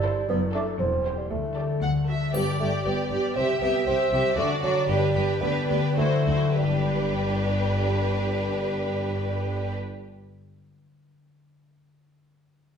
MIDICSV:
0, 0, Header, 1, 9, 480
1, 0, Start_track
1, 0, Key_signature, 1, "major"
1, 0, Tempo, 511509
1, 274, Time_signature, 2, 2, 24, 8
1, 5081, Tempo, 560224
1, 5561, Tempo, 600000
1, 11000, End_track
2, 0, Start_track
2, 0, Title_t, "Violin section"
2, 0, Program_c, 0, 48
2, 36, Note_on_c, 0, 72, 56
2, 212, Note_off_c, 0, 72, 0
2, 513, Note_on_c, 0, 74, 53
2, 687, Note_off_c, 0, 74, 0
2, 995, Note_on_c, 0, 72, 46
2, 1171, Note_off_c, 0, 72, 0
2, 1475, Note_on_c, 0, 74, 42
2, 1654, Note_off_c, 0, 74, 0
2, 1715, Note_on_c, 0, 78, 44
2, 1790, Note_off_c, 0, 78, 0
2, 1969, Note_on_c, 0, 76, 39
2, 2200, Note_off_c, 0, 76, 0
2, 2209, Note_on_c, 0, 74, 46
2, 2440, Note_off_c, 0, 74, 0
2, 2450, Note_on_c, 0, 74, 44
2, 2670, Note_off_c, 0, 74, 0
2, 2681, Note_on_c, 0, 74, 40
2, 2915, Note_off_c, 0, 74, 0
2, 2925, Note_on_c, 0, 74, 39
2, 3154, Note_off_c, 0, 74, 0
2, 3158, Note_on_c, 0, 76, 46
2, 3386, Note_off_c, 0, 76, 0
2, 3398, Note_on_c, 0, 76, 44
2, 3628, Note_off_c, 0, 76, 0
2, 3638, Note_on_c, 0, 76, 43
2, 3860, Note_off_c, 0, 76, 0
2, 3872, Note_on_c, 0, 76, 44
2, 4090, Note_on_c, 0, 74, 47
2, 4100, Note_off_c, 0, 76, 0
2, 4330, Note_off_c, 0, 74, 0
2, 4342, Note_on_c, 0, 74, 47
2, 4579, Note_off_c, 0, 74, 0
2, 4592, Note_on_c, 0, 71, 52
2, 4814, Note_off_c, 0, 71, 0
2, 4825, Note_on_c, 0, 71, 47
2, 5065, Note_off_c, 0, 71, 0
2, 5076, Note_on_c, 0, 71, 52
2, 5305, Note_off_c, 0, 71, 0
2, 5315, Note_on_c, 0, 71, 48
2, 5555, Note_off_c, 0, 71, 0
2, 5562, Note_on_c, 0, 72, 46
2, 5794, Note_off_c, 0, 72, 0
2, 5805, Note_on_c, 0, 72, 39
2, 6038, Note_off_c, 0, 72, 0
2, 6047, Note_on_c, 0, 71, 47
2, 8570, Note_off_c, 0, 71, 0
2, 11000, End_track
3, 0, Start_track
3, 0, Title_t, "Violin section"
3, 0, Program_c, 1, 48
3, 43, Note_on_c, 1, 69, 58
3, 215, Note_off_c, 1, 69, 0
3, 510, Note_on_c, 1, 69, 55
3, 686, Note_off_c, 1, 69, 0
3, 993, Note_on_c, 1, 67, 43
3, 1170, Note_off_c, 1, 67, 0
3, 1471, Note_on_c, 1, 69, 40
3, 1652, Note_off_c, 1, 69, 0
3, 1959, Note_on_c, 1, 69, 40
3, 2138, Note_off_c, 1, 69, 0
3, 2194, Note_on_c, 1, 67, 44
3, 2430, Note_off_c, 1, 67, 0
3, 2441, Note_on_c, 1, 67, 40
3, 2667, Note_off_c, 1, 67, 0
3, 2678, Note_on_c, 1, 67, 45
3, 2914, Note_off_c, 1, 67, 0
3, 2927, Note_on_c, 1, 67, 39
3, 3148, Note_off_c, 1, 67, 0
3, 3159, Note_on_c, 1, 67, 48
3, 3381, Note_off_c, 1, 67, 0
3, 3392, Note_on_c, 1, 67, 42
3, 3623, Note_off_c, 1, 67, 0
3, 3634, Note_on_c, 1, 67, 41
3, 3863, Note_off_c, 1, 67, 0
3, 3874, Note_on_c, 1, 67, 45
3, 4101, Note_off_c, 1, 67, 0
3, 4101, Note_on_c, 1, 66, 53
3, 4336, Note_off_c, 1, 66, 0
3, 4346, Note_on_c, 1, 66, 46
3, 4578, Note_on_c, 1, 67, 51
3, 4581, Note_off_c, 1, 66, 0
3, 4818, Note_off_c, 1, 67, 0
3, 4829, Note_on_c, 1, 67, 50
3, 5075, Note_off_c, 1, 67, 0
3, 5087, Note_on_c, 1, 67, 49
3, 5306, Note_off_c, 1, 67, 0
3, 5316, Note_on_c, 1, 67, 49
3, 5555, Note_off_c, 1, 67, 0
3, 5559, Note_on_c, 1, 66, 43
3, 5786, Note_off_c, 1, 66, 0
3, 5795, Note_on_c, 1, 66, 40
3, 6033, Note_off_c, 1, 66, 0
3, 6042, Note_on_c, 1, 67, 48
3, 8568, Note_off_c, 1, 67, 0
3, 11000, End_track
4, 0, Start_track
4, 0, Title_t, "Harp"
4, 0, Program_c, 2, 46
4, 0, Note_on_c, 2, 43, 59
4, 0, Note_on_c, 2, 60, 43
4, 0, Note_on_c, 2, 64, 45
4, 0, Note_on_c, 2, 76, 52
4, 0, Note_on_c, 2, 79, 44
4, 0, Note_on_c, 2, 81, 50
4, 39, Note_on_c, 2, 72, 48
4, 143, Note_off_c, 2, 64, 0
4, 155, Note_on_c, 2, 64, 48
4, 270, Note_on_c, 2, 42, 56
4, 291, Note_off_c, 2, 64, 0
4, 292, Note_off_c, 2, 43, 0
4, 292, Note_off_c, 2, 72, 0
4, 293, Note_off_c, 2, 60, 0
4, 293, Note_off_c, 2, 76, 0
4, 294, Note_off_c, 2, 79, 0
4, 391, Note_on_c, 2, 57, 43
4, 510, Note_on_c, 2, 62, 41
4, 625, Note_on_c, 2, 69, 41
4, 743, Note_on_c, 2, 40, 49
4, 763, Note_off_c, 2, 42, 0
4, 764, Note_off_c, 2, 69, 0
4, 765, Note_off_c, 2, 57, 0
4, 766, Note_off_c, 2, 62, 0
4, 766, Note_off_c, 2, 81, 0
4, 861, Note_on_c, 2, 55, 35
4, 981, Note_on_c, 2, 67, 36
4, 1100, Note_on_c, 2, 72, 34
4, 1221, Note_on_c, 2, 50, 41
4, 1245, Note_off_c, 2, 72, 0
4, 1247, Note_off_c, 2, 40, 0
4, 1340, Note_on_c, 2, 57, 32
4, 1451, Note_off_c, 2, 67, 0
4, 1463, Note_on_c, 2, 67, 29
4, 1582, Note_on_c, 2, 69, 31
4, 1693, Note_off_c, 2, 50, 0
4, 1704, Note_on_c, 2, 50, 42
4, 1729, Note_off_c, 2, 67, 0
4, 1731, Note_off_c, 2, 55, 0
4, 1816, Note_off_c, 2, 57, 0
4, 1827, Note_on_c, 2, 57, 32
4, 1950, Note_on_c, 2, 66, 32
4, 2060, Note_off_c, 2, 69, 0
4, 2071, Note_on_c, 2, 69, 33
4, 2192, Note_on_c, 2, 43, 46
4, 2213, Note_off_c, 2, 50, 0
4, 2214, Note_off_c, 2, 57, 0
4, 2214, Note_off_c, 2, 66, 0
4, 2214, Note_off_c, 2, 69, 0
4, 2314, Note_on_c, 2, 55, 38
4, 2436, Note_on_c, 2, 67, 32
4, 2553, Note_on_c, 2, 74, 37
4, 2678, Note_on_c, 2, 79, 42
4, 2799, Note_on_c, 2, 86, 39
4, 2909, Note_off_c, 2, 67, 0
4, 2920, Note_on_c, 2, 67, 41
4, 3026, Note_off_c, 2, 55, 0
4, 3037, Note_on_c, 2, 55, 37
4, 3158, Note_on_c, 2, 48, 48
4, 3172, Note_off_c, 2, 43, 0
4, 3172, Note_off_c, 2, 74, 0
4, 3174, Note_off_c, 2, 86, 0
4, 3264, Note_off_c, 2, 55, 0
4, 3276, Note_on_c, 2, 55, 38
4, 3382, Note_off_c, 2, 67, 0
4, 3393, Note_on_c, 2, 67, 37
4, 3512, Note_on_c, 2, 76, 39
4, 3621, Note_off_c, 2, 79, 0
4, 3632, Note_on_c, 2, 79, 46
4, 3748, Note_on_c, 2, 88, 48
4, 3856, Note_off_c, 2, 67, 0
4, 3867, Note_on_c, 2, 67, 43
4, 3973, Note_off_c, 2, 55, 0
4, 3985, Note_on_c, 2, 55, 44
4, 4100, Note_on_c, 2, 50, 54
4, 4121, Note_off_c, 2, 76, 0
4, 4121, Note_off_c, 2, 88, 0
4, 4122, Note_off_c, 2, 48, 0
4, 4122, Note_off_c, 2, 55, 0
4, 4122, Note_off_c, 2, 67, 0
4, 4122, Note_off_c, 2, 79, 0
4, 4221, Note_on_c, 2, 62, 41
4, 4341, Note_on_c, 2, 74, 39
4, 4460, Note_on_c, 2, 66, 43
4, 4584, Note_on_c, 2, 43, 57
4, 4602, Note_off_c, 2, 50, 0
4, 4602, Note_off_c, 2, 66, 0
4, 4707, Note_on_c, 2, 55, 40
4, 4820, Note_off_c, 2, 62, 0
4, 4831, Note_on_c, 2, 62, 41
4, 4957, Note_on_c, 2, 67, 48
4, 5080, Note_on_c, 2, 50, 56
4, 5099, Note_off_c, 2, 43, 0
4, 5186, Note_off_c, 2, 62, 0
4, 5197, Note_on_c, 2, 62, 43
4, 5313, Note_on_c, 2, 71, 40
4, 5426, Note_off_c, 2, 74, 0
4, 5436, Note_on_c, 2, 74, 39
4, 5545, Note_off_c, 2, 50, 0
4, 5555, Note_on_c, 2, 50, 54
4, 5577, Note_off_c, 2, 71, 0
4, 5579, Note_off_c, 2, 55, 0
4, 5580, Note_off_c, 2, 67, 0
4, 5672, Note_on_c, 2, 54, 39
4, 5793, Note_on_c, 2, 64, 36
4, 5916, Note_on_c, 2, 66, 38
4, 6034, Note_on_c, 2, 43, 36
4, 6055, Note_off_c, 2, 54, 0
4, 6056, Note_off_c, 2, 50, 0
4, 6056, Note_off_c, 2, 64, 0
4, 6057, Note_off_c, 2, 66, 0
4, 6089, Note_on_c, 2, 55, 37
4, 6136, Note_off_c, 2, 62, 0
4, 6145, Note_on_c, 2, 62, 36
4, 6203, Note_on_c, 2, 71, 38
4, 6248, Note_off_c, 2, 74, 0
4, 6257, Note_on_c, 2, 74, 39
4, 9151, Note_off_c, 2, 55, 0
4, 9154, Note_off_c, 2, 43, 0
4, 9179, Note_off_c, 2, 62, 0
4, 9208, Note_off_c, 2, 71, 0
4, 9235, Note_off_c, 2, 74, 0
4, 11000, End_track
5, 0, Start_track
5, 0, Title_t, "Viola section"
5, 0, Program_c, 3, 48
5, 34, Note_on_c, 3, 64, 55
5, 211, Note_off_c, 3, 64, 0
5, 511, Note_on_c, 3, 62, 55
5, 687, Note_off_c, 3, 62, 0
5, 990, Note_on_c, 3, 64, 40
5, 1169, Note_off_c, 3, 64, 0
5, 1473, Note_on_c, 3, 67, 42
5, 1653, Note_off_c, 3, 67, 0
5, 1956, Note_on_c, 3, 66, 37
5, 2136, Note_off_c, 3, 66, 0
5, 2199, Note_on_c, 3, 67, 48
5, 2435, Note_off_c, 3, 67, 0
5, 2445, Note_on_c, 3, 67, 42
5, 2665, Note_off_c, 3, 67, 0
5, 2677, Note_on_c, 3, 67, 39
5, 2908, Note_off_c, 3, 67, 0
5, 2919, Note_on_c, 3, 67, 38
5, 3152, Note_off_c, 3, 67, 0
5, 3161, Note_on_c, 3, 67, 50
5, 3381, Note_off_c, 3, 67, 0
5, 3392, Note_on_c, 3, 67, 45
5, 3616, Note_off_c, 3, 67, 0
5, 3627, Note_on_c, 3, 67, 47
5, 3857, Note_off_c, 3, 67, 0
5, 3868, Note_on_c, 3, 67, 45
5, 4099, Note_off_c, 3, 67, 0
5, 4110, Note_on_c, 3, 62, 52
5, 4340, Note_off_c, 3, 62, 0
5, 4351, Note_on_c, 3, 62, 53
5, 4579, Note_off_c, 3, 62, 0
5, 4590, Note_on_c, 3, 62, 49
5, 4823, Note_off_c, 3, 62, 0
5, 4834, Note_on_c, 3, 62, 45
5, 5074, Note_off_c, 3, 62, 0
5, 5085, Note_on_c, 3, 62, 52
5, 5314, Note_off_c, 3, 62, 0
5, 5324, Note_on_c, 3, 62, 46
5, 5560, Note_off_c, 3, 62, 0
5, 5563, Note_on_c, 3, 64, 46
5, 5795, Note_off_c, 3, 64, 0
5, 5808, Note_on_c, 3, 64, 37
5, 6039, Note_off_c, 3, 64, 0
5, 6045, Note_on_c, 3, 62, 52
5, 8569, Note_off_c, 3, 62, 0
5, 11000, End_track
6, 0, Start_track
6, 0, Title_t, "Bassoon"
6, 0, Program_c, 4, 70
6, 0, Note_on_c, 4, 55, 77
6, 263, Note_off_c, 4, 55, 0
6, 275, Note_on_c, 4, 59, 89
6, 381, Note_off_c, 4, 59, 0
6, 512, Note_on_c, 4, 57, 55
6, 618, Note_off_c, 4, 57, 0
6, 744, Note_on_c, 4, 60, 73
6, 1109, Note_on_c, 4, 55, 46
6, 1123, Note_off_c, 4, 60, 0
6, 1219, Note_off_c, 4, 55, 0
6, 1224, Note_on_c, 4, 57, 51
6, 1702, Note_off_c, 4, 57, 0
6, 2191, Note_on_c, 4, 59, 62
6, 2301, Note_off_c, 4, 59, 0
6, 2438, Note_on_c, 4, 57, 54
6, 2547, Note_off_c, 4, 57, 0
6, 2684, Note_on_c, 4, 59, 67
6, 3145, Note_off_c, 4, 59, 0
6, 3150, Note_on_c, 4, 60, 70
6, 3258, Note_off_c, 4, 60, 0
6, 3392, Note_on_c, 4, 59, 62
6, 3621, Note_off_c, 4, 59, 0
6, 3626, Note_on_c, 4, 60, 78
6, 4091, Note_off_c, 4, 60, 0
6, 4107, Note_on_c, 4, 57, 68
6, 4214, Note_off_c, 4, 57, 0
6, 4343, Note_on_c, 4, 54, 59
6, 4580, Note_off_c, 4, 54, 0
6, 4585, Note_on_c, 4, 55, 74
6, 5078, Note_on_c, 4, 59, 78
6, 5091, Note_off_c, 4, 55, 0
6, 5557, Note_off_c, 4, 59, 0
6, 5562, Note_on_c, 4, 57, 68
6, 6031, Note_off_c, 4, 57, 0
6, 6043, Note_on_c, 4, 55, 54
6, 8568, Note_off_c, 4, 55, 0
6, 11000, End_track
7, 0, Start_track
7, 0, Title_t, "Cello section"
7, 0, Program_c, 5, 48
7, 0, Note_on_c, 5, 43, 62
7, 175, Note_off_c, 5, 43, 0
7, 274, Note_on_c, 5, 42, 64
7, 646, Note_off_c, 5, 42, 0
7, 747, Note_on_c, 5, 40, 57
7, 1128, Note_off_c, 5, 40, 0
7, 1235, Note_on_c, 5, 38, 48
7, 1615, Note_off_c, 5, 38, 0
7, 1715, Note_on_c, 5, 38, 48
7, 2098, Note_off_c, 5, 38, 0
7, 2201, Note_on_c, 5, 43, 47
7, 2276, Note_off_c, 5, 43, 0
7, 2442, Note_on_c, 5, 43, 47
7, 2517, Note_off_c, 5, 43, 0
7, 2686, Note_on_c, 5, 43, 46
7, 2761, Note_off_c, 5, 43, 0
7, 2923, Note_on_c, 5, 43, 48
7, 2998, Note_off_c, 5, 43, 0
7, 3156, Note_on_c, 5, 48, 45
7, 3231, Note_off_c, 5, 48, 0
7, 3388, Note_on_c, 5, 48, 49
7, 3463, Note_off_c, 5, 48, 0
7, 3632, Note_on_c, 5, 48, 51
7, 3707, Note_off_c, 5, 48, 0
7, 3862, Note_on_c, 5, 48, 50
7, 3937, Note_off_c, 5, 48, 0
7, 4098, Note_on_c, 5, 50, 59
7, 4174, Note_off_c, 5, 50, 0
7, 4337, Note_on_c, 5, 50, 51
7, 4412, Note_off_c, 5, 50, 0
7, 4581, Note_on_c, 5, 43, 58
7, 4656, Note_off_c, 5, 43, 0
7, 4824, Note_on_c, 5, 43, 57
7, 4899, Note_off_c, 5, 43, 0
7, 5075, Note_on_c, 5, 38, 56
7, 5144, Note_off_c, 5, 38, 0
7, 5313, Note_on_c, 5, 38, 55
7, 5382, Note_off_c, 5, 38, 0
7, 5559, Note_on_c, 5, 38, 51
7, 5624, Note_off_c, 5, 38, 0
7, 5794, Note_on_c, 5, 38, 47
7, 5858, Note_off_c, 5, 38, 0
7, 6036, Note_on_c, 5, 43, 49
7, 8565, Note_off_c, 5, 43, 0
7, 11000, End_track
8, 0, Start_track
8, 0, Title_t, "Double bass section"
8, 0, Program_c, 6, 48
8, 0, Note_on_c, 6, 31, 71
8, 174, Note_off_c, 6, 31, 0
8, 273, Note_on_c, 6, 30, 65
8, 646, Note_off_c, 6, 30, 0
8, 745, Note_on_c, 6, 28, 58
8, 1127, Note_off_c, 6, 28, 0
8, 1222, Note_on_c, 6, 38, 50
8, 1609, Note_off_c, 6, 38, 0
8, 1712, Note_on_c, 6, 38, 46
8, 2096, Note_off_c, 6, 38, 0
8, 2194, Note_on_c, 6, 31, 47
8, 2270, Note_off_c, 6, 31, 0
8, 2437, Note_on_c, 6, 31, 42
8, 2512, Note_off_c, 6, 31, 0
8, 2675, Note_on_c, 6, 31, 48
8, 2750, Note_off_c, 6, 31, 0
8, 2915, Note_on_c, 6, 31, 50
8, 2990, Note_off_c, 6, 31, 0
8, 3149, Note_on_c, 6, 36, 47
8, 3224, Note_off_c, 6, 36, 0
8, 3389, Note_on_c, 6, 36, 44
8, 3464, Note_off_c, 6, 36, 0
8, 3630, Note_on_c, 6, 36, 50
8, 3705, Note_off_c, 6, 36, 0
8, 3861, Note_on_c, 6, 36, 50
8, 3936, Note_off_c, 6, 36, 0
8, 4098, Note_on_c, 6, 38, 55
8, 4173, Note_off_c, 6, 38, 0
8, 4342, Note_on_c, 6, 38, 48
8, 4417, Note_off_c, 6, 38, 0
8, 4580, Note_on_c, 6, 31, 55
8, 4655, Note_off_c, 6, 31, 0
8, 4829, Note_on_c, 6, 31, 56
8, 4905, Note_off_c, 6, 31, 0
8, 5079, Note_on_c, 6, 38, 56
8, 5148, Note_off_c, 6, 38, 0
8, 5311, Note_on_c, 6, 38, 48
8, 5380, Note_off_c, 6, 38, 0
8, 5556, Note_on_c, 6, 38, 50
8, 5620, Note_off_c, 6, 38, 0
8, 5792, Note_on_c, 6, 38, 46
8, 5856, Note_off_c, 6, 38, 0
8, 6037, Note_on_c, 6, 31, 51
8, 8565, Note_off_c, 6, 31, 0
8, 11000, End_track
9, 0, Start_track
9, 0, Title_t, "Drums"
9, 2200, Note_on_c, 9, 81, 31
9, 2294, Note_off_c, 9, 81, 0
9, 11000, End_track
0, 0, End_of_file